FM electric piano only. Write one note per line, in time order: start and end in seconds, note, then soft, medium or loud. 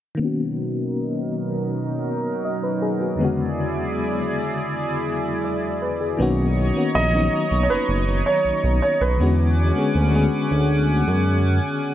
0.15 3.13 D#3 medium
0.15 3.15 A#3 medium
0.20 3.16 B3 medium
0.20 3.17 C#4 medium
0.25 2.06 F#4 medium
2.45 2.63 D#5 medium
2.63 2.81 B4 medium
2.82 3.00 G#4 medium
3.01 3.23 F#4 medium
3.15 5.76 E2 medium
3.15 5.77 D3 medium
3.15 5.78 G#3 medium
3.21 5.80 C#3 medium
3.21 5.79 B3 medium
3.21 5.81 F#4 medium
5.45 5.80 D5 medium
5.82 6.00 B4 medium
6.01 6.37 G#4 medium
6.17 6.62 D#3 medium
6.17 6.62 A#3 medium
6.17 6.63 B3 medium
6.17 6.63 C#4 medium
6.22 6.64 F#4 loud
6.73 7.03 D#3 medium
6.73 7.04 A#3 medium
6.73 7.05 B3 medium
6.73 7.05 C#4 medium
6.78 7.06 F#4 medium
7.11 8.27 D#3 medium
7.11 8.28 F#3 medium
7.11 8.28 B3 medium
7.11 8.29 C#4 medium
7.16 8.30 D#4 medium
9.18 9.62 D3 medium
9.18 9.62 G#3 medium
9.18 9.63 B3 medium
9.18 9.64 C#4 medium
9.22 9.64 F#4 medium
9.74 10.04 D3 medium
9.74 10.04 G#3 medium
9.74 10.05 B3 medium
9.74 10.05 C#4 medium
9.79 10.06 G#4 medium
10.11 11.27 D3 medium
10.11 11.28 G#3 medium
10.11 11.28 B3 medium
10.11 11.29 C#4 medium
10.16 11.30 G#4 medium